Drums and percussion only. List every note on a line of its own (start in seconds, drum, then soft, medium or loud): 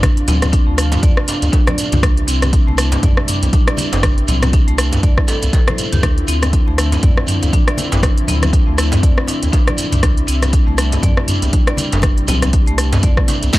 0.03 kick loud
0.03 cross-stick loud
0.03 closed hi-hat medium
0.03 high conga loud
0.03 shekere soft
0.17 closed hi-hat soft
0.28 open hi-hat medium
0.28 low conga loud
0.28 shekere medium
0.42 cross-stick medium
0.42 closed hi-hat soft
0.42 high conga medium
0.42 djembe tone medium
0.42 low conga medium
0.42 shekere medium
0.53 kick loud
0.53 closed hi-hat medium
0.53 shekere soft
0.78 cross-stick medium
0.78 open hi-hat medium
0.78 shekere medium
0.92 closed hi-hat soft
0.92 mid tom medium
0.92 djembe slap loud
0.92 djembe bass medium
0.92 shekere medium
1.03 kick loud
1.03 closed hi-hat medium
1.03 shekere soft
1.17 cross-stick medium
1.28 open hi-hat medium
1.28 djembe slap medium
1.28 shekere loud
1.42 closed hi-hat soft
1.42 djembe tone medium
1.42 shekere soft
1.52 kick loud
1.52 closed hi-hat medium
1.52 djembe slap medium
1.52 shekere soft
1.67 cross-stick medium
1.67 closed hi-hat soft
1.67 high conga medium
1.67 low conga loud
1.78 open hi-hat loud
1.78 djembe tone medium
1.78 shekere loud
1.92 closed hi-hat soft
1.92 mid tom medium
1.92 high conga loud
1.92 shekere soft
2.02 kick loud
2.02 cross-stick loud
2.02 closed hi-hat medium
2.02 high conga loud
2.02 shekere soft
2.17 closed hi-hat soft
2.28 open hi-hat medium
2.28 shekere loud
2.42 cross-stick medium
2.42 closed hi-hat soft
2.42 djembe tone medium
2.42 high conga medium
2.42 shekere medium
2.53 kick loud
2.53 closed hi-hat medium
2.53 shekere soft
2.68 high conga medium
2.78 cross-stick loud
2.78 open hi-hat medium
2.78 shekere loud
2.92 closed hi-hat soft
2.92 djembe slap loud
2.92 djembe bass medium
2.92 shekere medium
3.03 kick loud
3.03 closed hi-hat medium
3.03 mid tom medium
3.03 low conga medium
3.03 shekere soft
3.17 cross-stick medium
3.28 mid tom medium
3.28 open hi-hat medium
3.28 djembe tone medium
3.28 high conga medium
3.28 shekere loud
3.42 closed hi-hat soft
3.42 djembe tone loud
3.42 shekere medium
3.53 kick loud
3.53 closed hi-hat medium
3.53 low conga medium
3.53 shekere soft
3.68 cross-stick loud
3.68 closed hi-hat soft
3.77 open hi-hat loud
3.77 high conga loud
3.77 shekere loud
3.93 closed hi-hat soft
3.93 mid tom medium
3.93 djembe slap loud
3.93 shekere medium
4.03 kick loud
4.03 cross-stick loud
4.03 closed hi-hat medium
4.03 high conga loud
4.03 shekere soft
4.18 closed hi-hat soft
4.28 open hi-hat medium
4.28 low conga loud
4.28 shekere loud
4.42 cross-stick medium
4.42 closed hi-hat soft
4.42 high conga medium
4.42 djembe tone medium
4.42 low conga medium
4.42 shekere medium
4.53 kick loud
4.53 closed hi-hat medium
4.53 shekere soft
4.68 closed hi-hat soft
4.78 cross-stick loud
4.78 open hi-hat medium
4.78 shekere medium
4.92 closed hi-hat soft
4.92 mid tom medium
4.92 djembe slap loud
4.92 djembe bass loud
4.92 shekere medium
5.03 kick loud
5.03 closed hi-hat medium
5.18 kick medium
5.18 cross-stick medium
5.28 open hi-hat medium
5.28 djembe slap medium
5.28 shekere loud
5.42 closed hi-hat soft
5.42 djembe tone medium
5.42 shekere medium
5.53 kick loud
5.53 closed hi-hat medium
5.53 djembe slap medium
5.53 shekere soft
5.67 cross-stick loud
5.67 closed hi-hat soft
5.67 high conga medium
5.67 low conga medium
5.78 open hi-hat medium
5.78 djembe tone medium
5.78 shekere loud
5.93 closed hi-hat soft
5.93 mid tom medium
5.93 high conga loud
5.93 shekere medium
6.03 kick loud
6.03 cross-stick loud
6.03 closed hi-hat medium
6.03 high conga loud
6.18 closed hi-hat soft
6.28 open hi-hat medium
6.28 shekere medium
6.42 cross-stick medium
6.42 closed hi-hat soft
6.42 high conga medium
6.42 djembe tone medium
6.42 shekere medium
6.53 kick loud
6.53 closed hi-hat medium
6.53 shekere soft
6.68 high conga medium
6.78 cross-stick medium
6.78 open hi-hat medium
6.78 shekere medium
6.92 closed hi-hat soft
6.92 djembe slap loud
6.92 djembe bass medium
6.92 shekere soft
7.03 kick loud
7.03 closed hi-hat medium
7.03 mid tom medium
7.03 low conga medium
7.17 cross-stick medium
7.27 mid tom medium
7.27 open hi-hat medium
7.27 high conga medium
7.27 djembe tone medium
7.27 shekere loud
7.42 closed hi-hat soft
7.42 djembe tone medium
7.42 shekere medium
7.53 kick loud
7.53 closed hi-hat medium
7.53 low conga medium
7.68 cross-stick medium
7.68 closed hi-hat soft
7.78 open hi-hat medium
7.78 high conga loud
7.78 shekere medium
7.92 closed hi-hat soft
7.92 mid tom medium
7.92 djembe slap loud
7.92 shekere medium
8.03 kick loud
8.03 cross-stick medium
8.03 closed hi-hat medium
8.03 high conga loud
8.03 shekere soft
8.18 closed hi-hat soft
8.28 open hi-hat medium
8.28 low conga medium
8.28 shekere medium
8.42 cross-stick medium
8.42 closed hi-hat soft
8.42 djembe tone medium
8.42 high conga medium
8.42 low conga medium
8.42 shekere medium
8.53 kick loud
8.53 closed hi-hat medium
8.78 cross-stick medium
8.78 open hi-hat medium
8.78 shekere medium
8.92 closed hi-hat soft
8.92 mid tom medium
8.92 djembe slap loud
8.92 djembe bass loud
8.92 shekere medium
9.03 kick loud
9.03 closed hi-hat medium
9.18 cross-stick medium
9.27 open hi-hat medium
9.27 djembe slap medium
9.27 shekere medium
9.43 closed hi-hat soft
9.43 djembe tone medium
9.43 shekere medium
9.53 kick loud
9.53 closed hi-hat medium
9.53 djembe slap medium
9.53 shekere soft
9.67 cross-stick medium
9.67 closed hi-hat soft
9.67 high conga medium
9.67 low conga medium
9.78 open hi-hat medium
9.78 djembe tone medium
9.78 shekere loud
9.92 closed hi-hat soft
9.92 mid tom medium
9.92 high conga loud
9.92 shekere soft
10.03 kick loud
10.03 cross-stick medium
10.03 closed hi-hat medium
10.03 high conga loud
10.03 shekere soft
10.17 closed hi-hat soft
10.28 open hi-hat medium
10.28 shekere medium
10.42 cross-stick medium
10.42 closed hi-hat soft
10.42 djembe tone medium
10.42 high conga medium
10.42 shekere soft
10.53 kick loud
10.53 closed hi-hat medium
10.68 high conga medium
10.78 cross-stick medium
10.78 open hi-hat medium
10.78 shekere medium
10.92 closed hi-hat soft
10.92 djembe slap loud
10.92 djembe bass loud
10.92 shekere soft
11.03 kick loud
11.03 closed hi-hat medium
11.03 mid tom medium
11.03 low conga medium
11.03 shekere soft
11.17 cross-stick medium
11.28 mid tom medium
11.28 open hi-hat medium
11.28 high conga medium
11.28 djembe tone medium
11.28 shekere medium
11.42 closed hi-hat soft
11.42 djembe tone medium
11.42 shekere medium
11.53 kick loud
11.53 closed hi-hat medium
11.53 low conga medium
11.67 cross-stick medium
11.67 closed hi-hat soft
11.77 open hi-hat medium
11.77 high conga loud
11.77 shekere medium
11.92 closed hi-hat soft
11.92 mid tom medium
11.92 djembe slap loud
11.92 shekere soft
12.02 kick loud
12.02 cross-stick medium
12.02 closed hi-hat medium
12.02 high conga loud
12.18 closed hi-hat soft
12.28 open hi-hat medium
12.28 low conga loud
12.28 shekere medium
12.42 cross-stick medium
12.42 closed hi-hat soft
12.42 djembe tone medium
12.42 high conga medium
12.42 low conga medium
12.42 shekere soft
12.53 kick loud
12.53 closed hi-hat medium
12.66 closed hi-hat soft
12.66 high conga medium
12.78 cross-stick medium
12.78 open hi-hat loud
12.78 shekere medium
12.93 closed hi-hat soft
12.93 mid tom medium
12.93 djembe slap loud
12.93 djembe bass loud
12.93 shekere soft
13.03 kick loud
13.03 closed hi-hat medium
13.03 shekere soft
13.17 kick medium
13.17 cross-stick medium
13.28 open hi-hat medium
13.28 djembe slap medium
13.28 high conga medium
13.28 shekere medium
13.42 closed hi-hat soft
13.42 djembe tone medium
13.42 shekere medium
13.53 kick loud
13.53 snare medium
13.53 closed hi-hat medium
13.53 djembe slap medium
13.53 shekere soft